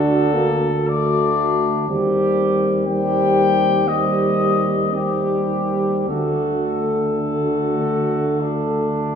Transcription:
0, 0, Header, 1, 6, 480
1, 0, Start_track
1, 0, Tempo, 1088929
1, 391, Tempo, 1000000
1, 874, Time_signature, 4, 2, 24, 8
1, 1831, Tempo, 1063830
1, 2311, Tempo, 1151631
1, 4062, End_track
2, 0, Start_track
2, 0, Title_t, "Cornet"
2, 0, Program_c, 0, 56
2, 0, Note_on_c, 0, 69, 72
2, 389, Note_on_c, 0, 74, 69
2, 396, Note_off_c, 0, 69, 0
2, 873, Note_off_c, 0, 74, 0
2, 1333, Note_on_c, 0, 79, 78
2, 1828, Note_on_c, 0, 75, 60
2, 1835, Note_off_c, 0, 79, 0
2, 2311, Note_on_c, 0, 67, 52
2, 2318, Note_off_c, 0, 75, 0
2, 2780, Note_off_c, 0, 67, 0
2, 2783, Note_on_c, 0, 69, 46
2, 4062, Note_off_c, 0, 69, 0
2, 4062, End_track
3, 0, Start_track
3, 0, Title_t, "Flugelhorn"
3, 0, Program_c, 1, 56
3, 0, Note_on_c, 1, 66, 51
3, 265, Note_off_c, 1, 66, 0
3, 399, Note_on_c, 1, 62, 45
3, 859, Note_off_c, 1, 62, 0
3, 876, Note_on_c, 1, 67, 51
3, 1325, Note_off_c, 1, 67, 0
3, 1353, Note_on_c, 1, 67, 48
3, 1825, Note_off_c, 1, 67, 0
3, 1843, Note_on_c, 1, 67, 42
3, 2308, Note_off_c, 1, 67, 0
3, 2325, Note_on_c, 1, 67, 37
3, 2788, Note_on_c, 1, 66, 37
3, 2794, Note_off_c, 1, 67, 0
3, 3229, Note_off_c, 1, 66, 0
3, 3280, Note_on_c, 1, 66, 40
3, 3756, Note_on_c, 1, 62, 46
3, 3762, Note_off_c, 1, 66, 0
3, 4062, Note_off_c, 1, 62, 0
3, 4062, End_track
4, 0, Start_track
4, 0, Title_t, "Euphonium"
4, 0, Program_c, 2, 58
4, 0, Note_on_c, 2, 62, 51
4, 267, Note_off_c, 2, 62, 0
4, 398, Note_on_c, 2, 66, 51
4, 858, Note_off_c, 2, 66, 0
4, 872, Note_on_c, 2, 60, 49
4, 1323, Note_off_c, 2, 60, 0
4, 1343, Note_on_c, 2, 60, 48
4, 1820, Note_off_c, 2, 60, 0
4, 1832, Note_on_c, 2, 60, 39
4, 2302, Note_off_c, 2, 60, 0
4, 2305, Note_on_c, 2, 60, 37
4, 2786, Note_on_c, 2, 57, 39
4, 2792, Note_off_c, 2, 60, 0
4, 4062, Note_off_c, 2, 57, 0
4, 4062, End_track
5, 0, Start_track
5, 0, Title_t, "Trombone"
5, 0, Program_c, 3, 57
5, 0, Note_on_c, 3, 62, 53
5, 150, Note_on_c, 3, 58, 51
5, 157, Note_off_c, 3, 62, 0
5, 308, Note_off_c, 3, 58, 0
5, 385, Note_on_c, 3, 57, 47
5, 851, Note_off_c, 3, 57, 0
5, 872, Note_on_c, 3, 55, 44
5, 1324, Note_off_c, 3, 55, 0
5, 1344, Note_on_c, 3, 55, 46
5, 1819, Note_off_c, 3, 55, 0
5, 1822, Note_on_c, 3, 55, 44
5, 2297, Note_off_c, 3, 55, 0
5, 2304, Note_on_c, 3, 55, 42
5, 2785, Note_on_c, 3, 50, 36
5, 2791, Note_off_c, 3, 55, 0
5, 4062, Note_off_c, 3, 50, 0
5, 4062, End_track
6, 0, Start_track
6, 0, Title_t, "Tuba"
6, 0, Program_c, 4, 58
6, 0, Note_on_c, 4, 38, 46
6, 788, Note_off_c, 4, 38, 0
6, 870, Note_on_c, 4, 39, 55
6, 2765, Note_off_c, 4, 39, 0
6, 2779, Note_on_c, 4, 38, 36
6, 4062, Note_off_c, 4, 38, 0
6, 4062, End_track
0, 0, End_of_file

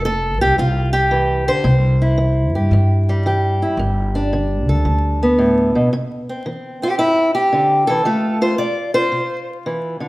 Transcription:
0, 0, Header, 1, 3, 480
1, 0, Start_track
1, 0, Key_signature, 0, "major"
1, 0, Tempo, 533808
1, 1485, Time_signature, 4, 2, 24, 8
1, 9066, End_track
2, 0, Start_track
2, 0, Title_t, "Steel-string acoustic guitar"
2, 0, Program_c, 0, 25
2, 45, Note_on_c, 0, 69, 92
2, 54, Note_on_c, 0, 57, 64
2, 368, Note_off_c, 0, 69, 0
2, 371, Note_on_c, 0, 67, 89
2, 499, Note_off_c, 0, 57, 0
2, 523, Note_on_c, 0, 48, 66
2, 525, Note_off_c, 0, 67, 0
2, 531, Note_on_c, 0, 65, 91
2, 831, Note_off_c, 0, 65, 0
2, 835, Note_on_c, 0, 67, 94
2, 973, Note_off_c, 0, 48, 0
2, 998, Note_on_c, 0, 52, 65
2, 1325, Note_off_c, 0, 52, 0
2, 1329, Note_on_c, 0, 50, 59
2, 1331, Note_on_c, 0, 72, 107
2, 1474, Note_on_c, 0, 48, 77
2, 1477, Note_off_c, 0, 67, 0
2, 1484, Note_off_c, 0, 50, 0
2, 1813, Note_on_c, 0, 64, 47
2, 1928, Note_off_c, 0, 48, 0
2, 1956, Note_on_c, 0, 52, 65
2, 2290, Note_off_c, 0, 72, 0
2, 2294, Note_on_c, 0, 67, 49
2, 2409, Note_off_c, 0, 52, 0
2, 2454, Note_on_c, 0, 43, 65
2, 2780, Note_on_c, 0, 55, 49
2, 2898, Note_off_c, 0, 43, 0
2, 2930, Note_on_c, 0, 52, 66
2, 2933, Note_off_c, 0, 67, 0
2, 2936, Note_on_c, 0, 67, 52
2, 3246, Note_off_c, 0, 64, 0
2, 3257, Note_on_c, 0, 64, 46
2, 3376, Note_off_c, 0, 52, 0
2, 3389, Note_off_c, 0, 64, 0
2, 3411, Note_on_c, 0, 43, 81
2, 3732, Note_on_c, 0, 62, 60
2, 3856, Note_off_c, 0, 43, 0
2, 3892, Note_on_c, 0, 50, 68
2, 4214, Note_off_c, 0, 67, 0
2, 4217, Note_on_c, 0, 69, 58
2, 4337, Note_off_c, 0, 50, 0
2, 4361, Note_on_c, 0, 50, 63
2, 4694, Note_off_c, 0, 55, 0
2, 4700, Note_on_c, 0, 59, 60
2, 4811, Note_off_c, 0, 50, 0
2, 4842, Note_on_c, 0, 45, 66
2, 5168, Note_off_c, 0, 45, 0
2, 5173, Note_on_c, 0, 47, 60
2, 5306, Note_off_c, 0, 62, 0
2, 5309, Note_off_c, 0, 69, 0
2, 5310, Note_off_c, 0, 59, 0
2, 5325, Note_off_c, 0, 47, 0
2, 5330, Note_on_c, 0, 48, 78
2, 5659, Note_on_c, 0, 60, 45
2, 5776, Note_off_c, 0, 48, 0
2, 5807, Note_on_c, 0, 52, 65
2, 6131, Note_off_c, 0, 60, 0
2, 6135, Note_on_c, 0, 60, 47
2, 6145, Note_on_c, 0, 67, 89
2, 6255, Note_off_c, 0, 52, 0
2, 6277, Note_on_c, 0, 43, 64
2, 6279, Note_off_c, 0, 67, 0
2, 6283, Note_on_c, 0, 64, 91
2, 6602, Note_off_c, 0, 64, 0
2, 6605, Note_on_c, 0, 67, 80
2, 6731, Note_off_c, 0, 43, 0
2, 6766, Note_on_c, 0, 50, 63
2, 7076, Note_off_c, 0, 67, 0
2, 7079, Note_on_c, 0, 69, 91
2, 7092, Note_off_c, 0, 50, 0
2, 7100, Note_on_c, 0, 52, 63
2, 7240, Note_off_c, 0, 52, 0
2, 7240, Note_on_c, 0, 53, 76
2, 7243, Note_off_c, 0, 60, 0
2, 7244, Note_on_c, 0, 57, 51
2, 7246, Note_on_c, 0, 65, 55
2, 7556, Note_off_c, 0, 65, 0
2, 7562, Note_off_c, 0, 69, 0
2, 7566, Note_on_c, 0, 65, 48
2, 7570, Note_on_c, 0, 72, 84
2, 7692, Note_off_c, 0, 53, 0
2, 7714, Note_off_c, 0, 57, 0
2, 7714, Note_off_c, 0, 72, 0
2, 7717, Note_on_c, 0, 74, 86
2, 7725, Note_on_c, 0, 57, 63
2, 8036, Note_off_c, 0, 65, 0
2, 8037, Note_off_c, 0, 74, 0
2, 8040, Note_on_c, 0, 72, 100
2, 8046, Note_on_c, 0, 65, 47
2, 8175, Note_off_c, 0, 57, 0
2, 8198, Note_on_c, 0, 48, 63
2, 8524, Note_off_c, 0, 72, 0
2, 8652, Note_off_c, 0, 48, 0
2, 8686, Note_on_c, 0, 52, 65
2, 8992, Note_off_c, 0, 52, 0
2, 8995, Note_on_c, 0, 50, 62
2, 9066, Note_off_c, 0, 50, 0
2, 9066, Note_off_c, 0, 65, 0
2, 9066, End_track
3, 0, Start_track
3, 0, Title_t, "Upright bass"
3, 0, Program_c, 1, 32
3, 0, Note_on_c, 1, 29, 103
3, 369, Note_off_c, 1, 29, 0
3, 369, Note_on_c, 1, 36, 81
3, 499, Note_off_c, 1, 36, 0
3, 520, Note_on_c, 1, 36, 101
3, 1328, Note_off_c, 1, 36, 0
3, 1478, Note_on_c, 1, 36, 105
3, 2281, Note_off_c, 1, 36, 0
3, 2281, Note_on_c, 1, 43, 84
3, 2414, Note_off_c, 1, 43, 0
3, 2436, Note_on_c, 1, 43, 96
3, 3245, Note_off_c, 1, 43, 0
3, 3392, Note_on_c, 1, 31, 102
3, 4203, Note_off_c, 1, 31, 0
3, 4203, Note_on_c, 1, 38, 88
3, 4335, Note_off_c, 1, 38, 0
3, 4362, Note_on_c, 1, 38, 92
3, 5168, Note_off_c, 1, 38, 0
3, 9066, End_track
0, 0, End_of_file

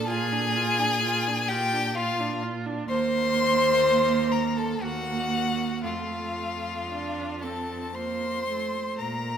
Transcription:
0, 0, Header, 1, 5, 480
1, 0, Start_track
1, 0, Tempo, 938967
1, 36, Time_signature, 3, 2, 24, 8
1, 1955, Tempo, 1003344
1, 2915, Tempo, 1056338
1, 3875, Tempo, 1023891
1, 4546, End_track
2, 0, Start_track
2, 0, Title_t, "Violin"
2, 0, Program_c, 0, 40
2, 41, Note_on_c, 0, 80, 127
2, 759, Note_on_c, 0, 79, 127
2, 766, Note_off_c, 0, 80, 0
2, 996, Note_on_c, 0, 77, 126
2, 1004, Note_off_c, 0, 79, 0
2, 1235, Note_off_c, 0, 77, 0
2, 1473, Note_on_c, 0, 84, 127
2, 2192, Note_on_c, 0, 82, 100
2, 2199, Note_off_c, 0, 84, 0
2, 2317, Note_on_c, 0, 81, 96
2, 2324, Note_off_c, 0, 82, 0
2, 2433, Note_on_c, 0, 78, 120
2, 2440, Note_off_c, 0, 81, 0
2, 2915, Note_off_c, 0, 78, 0
2, 2917, Note_on_c, 0, 77, 97
2, 3620, Note_off_c, 0, 77, 0
2, 3634, Note_on_c, 0, 81, 82
2, 3876, Note_on_c, 0, 84, 100
2, 3883, Note_off_c, 0, 81, 0
2, 4360, Note_off_c, 0, 84, 0
2, 4362, Note_on_c, 0, 82, 95
2, 4546, Note_off_c, 0, 82, 0
2, 4546, End_track
3, 0, Start_track
3, 0, Title_t, "Violin"
3, 0, Program_c, 1, 40
3, 36, Note_on_c, 1, 68, 118
3, 758, Note_on_c, 1, 67, 99
3, 766, Note_off_c, 1, 68, 0
3, 999, Note_on_c, 1, 65, 98
3, 1007, Note_off_c, 1, 67, 0
3, 1236, Note_off_c, 1, 65, 0
3, 1474, Note_on_c, 1, 72, 122
3, 2192, Note_on_c, 1, 70, 86
3, 2199, Note_off_c, 1, 72, 0
3, 2311, Note_on_c, 1, 69, 85
3, 2318, Note_off_c, 1, 70, 0
3, 2433, Note_on_c, 1, 66, 89
3, 2440, Note_off_c, 1, 69, 0
3, 2918, Note_off_c, 1, 66, 0
3, 2921, Note_on_c, 1, 65, 80
3, 3637, Note_on_c, 1, 69, 65
3, 3643, Note_off_c, 1, 65, 0
3, 3873, Note_off_c, 1, 69, 0
3, 3876, Note_on_c, 1, 72, 79
3, 4364, Note_on_c, 1, 70, 82
3, 4371, Note_off_c, 1, 72, 0
3, 4546, Note_off_c, 1, 70, 0
3, 4546, End_track
4, 0, Start_track
4, 0, Title_t, "Viola"
4, 0, Program_c, 2, 41
4, 43, Note_on_c, 2, 65, 82
4, 163, Note_on_c, 2, 62, 71
4, 171, Note_off_c, 2, 65, 0
4, 284, Note_on_c, 2, 65, 83
4, 292, Note_off_c, 2, 62, 0
4, 402, Note_on_c, 2, 62, 72
4, 409, Note_off_c, 2, 65, 0
4, 520, Note_off_c, 2, 62, 0
4, 527, Note_on_c, 2, 65, 75
4, 651, Note_on_c, 2, 62, 65
4, 659, Note_off_c, 2, 65, 0
4, 766, Note_on_c, 2, 65, 78
4, 774, Note_off_c, 2, 62, 0
4, 884, Note_on_c, 2, 62, 73
4, 892, Note_off_c, 2, 65, 0
4, 1001, Note_off_c, 2, 62, 0
4, 1007, Note_on_c, 2, 65, 77
4, 1124, Note_on_c, 2, 62, 79
4, 1132, Note_off_c, 2, 65, 0
4, 1244, Note_on_c, 2, 65, 77
4, 1251, Note_off_c, 2, 62, 0
4, 1360, Note_on_c, 2, 62, 83
4, 1367, Note_off_c, 2, 65, 0
4, 1475, Note_off_c, 2, 62, 0
4, 1479, Note_on_c, 2, 58, 88
4, 2412, Note_off_c, 2, 58, 0
4, 2431, Note_on_c, 2, 58, 74
4, 2920, Note_on_c, 2, 57, 61
4, 2927, Note_off_c, 2, 58, 0
4, 3348, Note_off_c, 2, 57, 0
4, 3398, Note_on_c, 2, 62, 81
4, 3644, Note_on_c, 2, 60, 65
4, 3651, Note_off_c, 2, 62, 0
4, 3880, Note_off_c, 2, 60, 0
4, 3884, Note_on_c, 2, 58, 64
4, 4123, Note_off_c, 2, 58, 0
4, 4129, Note_on_c, 2, 57, 60
4, 4360, Note_off_c, 2, 57, 0
4, 4546, End_track
5, 0, Start_track
5, 0, Title_t, "Cello"
5, 0, Program_c, 3, 42
5, 0, Note_on_c, 3, 46, 83
5, 1451, Note_off_c, 3, 46, 0
5, 1475, Note_on_c, 3, 39, 92
5, 2411, Note_off_c, 3, 39, 0
5, 2429, Note_on_c, 3, 39, 85
5, 2917, Note_on_c, 3, 41, 64
5, 2924, Note_off_c, 3, 39, 0
5, 4268, Note_off_c, 3, 41, 0
5, 4363, Note_on_c, 3, 46, 70
5, 4546, Note_off_c, 3, 46, 0
5, 4546, End_track
0, 0, End_of_file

